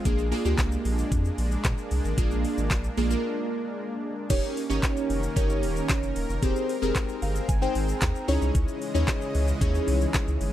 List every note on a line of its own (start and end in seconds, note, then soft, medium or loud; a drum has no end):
0.00 4.26 G#3 medium
0.05 0.32 A#1 loud
0.05 4.26 A#3 medium
0.05 0.26 A#3 medium
0.05 4.26 D4 medium
0.05 0.26 D4 medium
0.05 0.26 F4 medium
0.05 0.26 G#4 loud
0.05 kick loud
0.05 closed hi-hat medium
0.05 shaker medium
0.19 shaker soft
0.31 0.42 A#3 medium
0.31 0.42 D4 medium
0.31 0.42 F4 medium
0.31 0.42 G#4 loud
0.31 open hi-hat medium
0.31 shaker soft
0.45 0.54 D2 medium
0.45 1.28 A#3 medium
0.45 1.28 D4 medium
0.45 1.28 F4 medium
0.45 1.28 G4 loud
0.45 shaker medium
0.58 0.76 C2 medium
0.58 kick loud
0.58 snare medium
0.58 clap medium
0.58 clap loud
0.58 closed hi-hat medium
0.58 shaker medium
0.72 shaker medium
0.85 1.03 A#1 medium
0.85 open hi-hat medium
0.85 shaker soft
0.98 shaker medium
1.12 1.30 F2 loud
1.12 kick loud
1.12 closed hi-hat medium
1.12 shaker medium
1.25 shaker medium
1.38 1.56 A#1 loud
1.38 open hi-hat medium
1.38 shaker medium
1.51 shaker medium
1.65 1.74 A#2 loud
1.65 kick loud
1.65 snare medium
1.65 clap loud
1.65 clap medium
1.65 closed hi-hat medium
1.65 shaker medium
1.78 shaker soft
1.91 2.00 C2 loud
1.91 open hi-hat medium
1.91 shaker medium
2.05 2.14 G#1 medium
2.05 shaker medium
2.18 2.45 A#1 loud
2.18 2.80 A#3 medium
2.18 2.80 D4 medium
2.18 2.80 F4 medium
2.18 2.80 G#4 loud
2.18 kick loud
2.18 closed hi-hat medium
2.18 shaker medium
2.31 shaker soft
2.45 open hi-hat medium
2.45 shaker soft
2.58 2.72 G#1 medium
2.58 shaker medium
2.71 2.89 A#1 medium
2.71 kick loud
2.71 snare medium
2.71 clap loud
2.71 clap medium
2.71 closed hi-hat medium
2.71 shaker medium
2.84 shaker medium
2.97 3.16 A#1 medium
2.97 3.08 A#3 medium
2.97 3.08 D4 medium
2.97 3.08 F4 medium
2.97 3.08 G#4 medium
2.97 open hi-hat medium
2.97 shaker medium
3.10 3.93 A#3 medium
3.10 3.93 D4 medium
3.10 3.93 F4 medium
3.10 3.93 A#4 loud
3.10 shaker medium
4.30 4.39 D#1 loud
4.30 6.40 D#3 medium
4.30 6.40 A#3 medium
4.30 4.61 C#4 medium
4.30 6.40 C#4 medium
4.30 4.61 D#4 medium
4.30 4.61 G4 medium
4.30 8.24 A#4 medium
4.30 4.61 A#4 medium
4.30 4.61 C#5 loud
4.30 kick loud
4.30 closed hi-hat medium
4.30 crash loud
4.30 shaker medium
4.43 shaker soft
4.57 open hi-hat medium
4.57 shaker soft
4.70 4.79 G1 medium
4.70 5.21 C#4 medium
4.70 5.21 D#4 medium
4.70 5.22 G4 medium
4.70 5.22 A#4 medium
4.70 5.22 C#5 loud
4.70 shaker medium
4.83 kick loud
4.83 snare medium
4.83 clap medium
4.83 clap loud
4.83 closed hi-hat medium
4.83 shaker medium
4.97 shaker medium
5.10 5.28 F1 loud
5.10 open hi-hat medium
5.10 shaker medium
5.23 shaker medium
5.36 5.64 G1 loud
5.36 6.19 C#4 medium
5.36 6.19 D#4 medium
5.36 6.19 G4 medium
5.36 6.19 A#4 medium
5.36 6.19 C#5 loud
5.36 kick loud
5.36 closed hi-hat medium
5.36 shaker medium
5.50 shaker medium
5.63 5.81 D#1 medium
5.63 open hi-hat medium
5.63 shaker medium
5.76 shaker medium
5.89 kick loud
5.89 snare medium
5.89 clap medium
5.89 clap loud
5.89 closed hi-hat medium
5.89 shaker medium
6.03 6.12 F1 medium
6.03 shaker soft
6.16 6.25 D#1 medium
6.16 open hi-hat medium
6.16 shaker medium
6.29 6.38 F1 medium
6.29 shaker medium
6.42 6.52 D#1 loud
6.42 10.53 G#3 medium
6.42 6.73 C4 medium
6.42 8.26 C4 medium
6.42 6.73 D#4 medium
6.42 6.74 G4 medium
6.42 6.74 G#4 medium
6.42 6.74 C5 loud
6.42 kick loud
6.42 closed hi-hat medium
6.42 shaker medium
6.56 shaker medium
6.69 open hi-hat medium
6.69 shaker soft
6.82 6.91 F1 medium
6.82 7.44 C4 medium
6.82 7.44 D#4 medium
6.82 7.44 G4 medium
6.82 7.44 G#4 medium
6.82 7.44 A#4 loud
6.82 shaker medium
6.95 kick loud
6.95 snare medium
6.95 clap medium
6.95 clap loud
6.95 closed hi-hat medium
6.95 shaker medium
7.09 shaker medium
7.22 7.40 G1 medium
7.22 7.47 F5 medium
7.22 open hi-hat medium
7.22 shaker medium
7.35 shaker medium
7.49 7.67 G1 loud
7.49 7.98 G#5 medium
7.49 kick loud
7.49 closed hi-hat medium
7.49 shaker medium
7.62 8.28 C4 medium
7.62 8.27 D#4 medium
7.62 8.27 G#4 medium
7.62 8.28 C5 medium
7.62 8.28 G5 medium
7.62 shaker medium
7.75 7.93 G#1 medium
7.75 open hi-hat medium
7.75 shaker medium
7.89 shaker medium
8.02 8.11 D#2 loud
8.02 kick loud
8.02 snare medium
8.02 clap medium
8.02 clap loud
8.02 closed hi-hat medium
8.02 shaker medium
8.15 shaker soft
8.28 8.37 C#2 loud
8.28 10.53 C#3 medium
8.28 10.53 E3 loud
8.28 8.81 C#4 medium
8.28 8.81 D#4 medium
8.28 8.81 E4 medium
8.28 8.81 G#4 medium
8.28 8.82 C#5 loud
8.28 10.53 D#5 medium
8.28 open hi-hat medium
8.28 shaker medium
8.42 8.51 C2 medium
8.42 shaker medium
8.55 8.64 C#2 loud
8.55 kick loud
8.55 closed hi-hat medium
8.55 shaker medium
8.68 shaker medium
8.82 open hi-hat medium
8.82 shaker medium
8.94 9.04 D#2 medium
8.94 9.46 C#4 medium
8.94 9.46 D#4 medium
8.94 9.46 E4 medium
8.94 9.46 G#4 medium
8.94 9.46 C#5 loud
8.94 shaker medium
9.08 kick loud
9.08 snare medium
9.08 clap medium
9.08 clap loud
9.08 closed hi-hat medium
9.08 shaker medium
9.21 shaker medium
9.35 9.53 C#2 loud
9.35 open hi-hat medium
9.35 shaker medium
9.48 shaker medium
9.61 9.79 D#2 loud
9.61 10.44 C#4 medium
9.61 10.44 D#4 medium
9.61 10.44 E4 medium
9.61 10.44 G#4 medium
9.61 10.44 C#5 loud
9.61 kick loud
9.61 closed hi-hat medium
9.61 shaker medium
9.75 shaker medium
9.88 10.06 C2 medium
9.88 open hi-hat medium
9.88 shaker medium
10.01 shaker medium
10.14 kick loud
10.14 snare medium
10.14 clap medium
10.14 clap loud
10.14 closed hi-hat medium
10.14 shaker medium
10.28 10.37 C#2 medium
10.28 shaker soft
10.41 10.50 G1 medium
10.41 open hi-hat medium
10.41 shaker medium